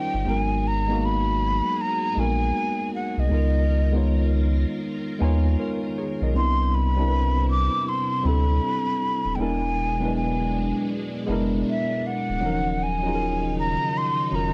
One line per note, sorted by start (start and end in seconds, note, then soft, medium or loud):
0.00 0.25 D#3 medium
0.00 0.29 G3 loud
0.00 0.25 C#4 medium
0.00 0.28 C#4 medium
0.00 0.28 D#4 medium
0.00 0.29 F4 medium
0.00 0.25 G4 medium
0.00 0.28 A#4 loud
0.00 0.22 C5 loud
0.00 0.31 G5 loud
0.14 0.26 G1 medium
0.25 1.62 G#1 loud
0.25 3.27 F#3 medium
0.25 0.82 G#3 medium
0.25 0.83 B3 medium
0.25 0.83 D#4 medium
0.25 0.84 F#4 medium
0.25 3.27 G#4 medium
0.25 0.69 G#5 loud
0.30 0.85 A#4 medium
0.67 1.06 A#5 loud
0.88 2.07 G#3 medium
0.88 2.08 B3 medium
0.88 2.09 D#4 medium
0.92 2.10 A#3 medium
0.92 2.10 F#4 medium
1.05 1.82 B5 loud
1.81 2.21 A#5 loud
2.15 2.52 A#1 loud
2.15 3.23 G#3 medium
2.15 2.25 A#3 medium
2.15 3.24 D#4 medium
2.19 3.27 B3 medium
2.19 3.25 F#4 medium
2.19 3.25 A#4 medium
2.19 2.94 G#5 loud
2.95 3.21 F#5 medium
3.18 3.30 C2 medium
3.18 4.32 D#5 medium
3.29 4.65 C#2 loud
3.29 6.31 D#3 medium
3.29 3.86 G#3 medium
3.29 3.86 B3 medium
3.29 3.87 D#4 medium
3.29 6.31 F4 medium
3.29 6.31 A#4 medium
3.33 3.88 F4 medium
3.33 3.88 A#4 medium
3.92 5.11 G#3 medium
3.92 5.12 B3 medium
3.92 5.13 D#4 medium
3.96 5.13 F4 medium
3.96 5.14 C#5 medium
5.19 5.56 D#2 medium
5.19 6.27 G#3 medium
5.19 6.27 B3 medium
5.19 6.28 D#4 medium
5.19 5.56 G#5 medium
5.23 5.59 F4 medium
5.23 5.59 C#5 medium
5.60 5.95 F4 medium
5.60 5.95 A#4 medium
5.60 5.97 C#5 medium
5.98 6.21 G#4 medium
5.98 6.21 C#5 medium
6.22 6.34 B1 medium
6.22 6.58 A#4 medium
6.22 6.58 D#5 medium
6.33 7.69 C2 medium
6.33 9.35 C3 medium
6.33 6.90 G3 medium
6.33 6.91 C4 medium
6.33 6.91 D4 medium
6.33 9.35 E4 medium
6.33 6.76 C6 loud
6.37 6.93 B3 medium
6.37 6.92 E4 medium
6.74 7.49 B5 loud
6.96 8.15 G3 medium
6.96 8.16 C4 medium
6.96 8.17 D4 medium
6.96 8.17 E4 medium
7.01 7.04 A#4 medium
7.08 8.21 B4 medium
7.51 7.90 D6 loud
7.89 8.27 C6 medium
8.23 8.60 D2 loud
8.23 9.30 G3 medium
8.23 9.31 C4 medium
8.23 9.32 D4 medium
8.23 9.32 E4 medium
8.23 9.37 B5 loud
8.29 9.33 A4 medium
9.25 9.37 D#1 medium
9.35 10.73 E1 loud
9.35 12.39 B2 medium
9.35 9.94 G#3 medium
9.35 12.39 G#3 medium
9.35 9.94 B3 medium
9.35 12.39 D4 medium
9.35 9.42 G5 medium
9.40 9.95 D4 medium
9.40 9.96 E4 medium
9.40 9.96 A#4 medium
9.40 10.15 G#5 loud
10.00 10.05 F#3 medium
10.00 11.20 B3 medium
10.00 11.20 D4 medium
10.00 11.21 E4 medium
10.05 11.22 G#3 medium
10.05 11.22 B4 medium
10.17 10.87 G#5 medium
11.26 11.64 F#1 loud
11.26 12.34 G#3 medium
11.26 12.35 B3 medium
11.26 12.35 D4 medium
11.31 12.36 E4 medium
11.31 12.37 A#4 loud
11.69 12.08 E5 medium
12.06 12.84 F#5 medium
12.30 12.41 D1 medium
12.41 13.77 D#1 loud
12.41 14.54 C#3 medium
12.41 14.54 D#3 medium
12.41 12.99 F3 medium
12.41 12.97 F#3 medium
12.41 12.98 C#4 medium
12.41 14.54 D#4 medium
12.41 12.99 D#4 medium
12.46 13.00 A#4 medium
12.83 13.57 G#5 loud
13.03 14.23 F#3 medium
13.03 14.23 C#4 medium
13.03 14.24 D#4 medium
13.07 14.25 F4 medium
13.07 13.11 G#4 medium
13.15 14.29 A#4 medium
13.59 13.99 A#5 medium
13.97 14.36 C6 loud
14.30 14.54 F1 loud
14.30 14.54 F#3 medium
14.30 14.54 C#4 medium
14.30 14.54 D#4 medium
14.30 14.54 F4 medium
14.35 14.54 A#4 medium
14.35 14.54 A#5 loud